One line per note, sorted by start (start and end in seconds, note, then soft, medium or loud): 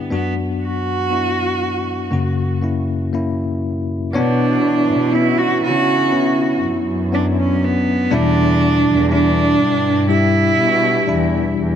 0.00 0.12 B3 medium
0.00 0.11 D4 medium
0.00 0.14 E4 medium
0.00 0.14 G4 medium
0.10 2.08 F#2 soft
0.10 2.08 F#3 soft
0.10 1.06 B3 medium
0.10 0.33 B3 medium
0.10 1.07 D4 medium
0.10 1.07 F#4 medium
0.63 2.59 F#4 medium
1.10 2.07 B3 medium
1.10 2.07 D4 soft
1.10 2.08 E4 medium
2.11 4.10 F#2 medium
2.11 4.10 C#3 medium
2.11 2.60 A#3 medium
2.11 2.60 C#4 medium
2.11 2.61 F#4 medium
2.61 3.10 A#3 medium
2.61 3.11 C#4 medium
2.61 3.12 E4 medium
3.13 4.09 A#3 medium
3.13 4.09 C#4 medium
3.13 4.10 E4 medium
4.13 4.85 B2 medium
4.13 7.58 E3 medium
4.13 5.09 B3 medium
4.13 5.15 D4 medium
4.13 5.10 D4 medium
4.13 7.58 E4 loud
4.13 5.09 C#5 medium
4.89 5.60 B2 medium
5.13 6.09 B3 medium
5.13 6.09 C#4 medium
5.13 5.40 E4 medium
5.13 6.10 F#4 medium
5.38 5.63 F#4 loud
5.64 6.60 C#3 medium
5.64 6.59 F#4 loud
6.12 7.07 B3 medium
6.12 7.08 C#4 medium
6.12 7.08 E4 medium
6.64 8.08 F#2 medium
7.12 8.07 B3 medium
7.12 8.07 C#4 medium
7.12 8.08 D4 medium
7.12 7.25 D4 medium
7.40 7.66 C#4 medium
7.64 8.15 B3 medium
8.11 8.82 E2 loud
8.11 9.56 B2 medium
8.11 10.06 D3 medium
8.11 9.05 G3 medium
8.11 9.06 D4 medium
8.11 10.06 D4 medium
8.11 9.12 D4 loud
8.11 9.06 E4 medium
8.87 9.57 E2 loud
9.09 10.04 G3 medium
9.09 10.05 D4 medium
9.09 10.06 D4 loud
9.09 10.05 E4 medium
9.60 10.55 G2 medium
10.09 11.03 G3 medium
10.09 11.03 D4 medium
10.09 11.54 E4 loud
10.09 11.04 G4 medium
10.59 11.05 B2 medium
10.59 11.56 G3 medium
10.59 11.56 G4 medium
11.07 11.54 E2 medium
11.07 11.76 G3 medium
11.07 11.76 D4 medium
11.07 11.76 E4 medium
11.58 11.76 E2 medium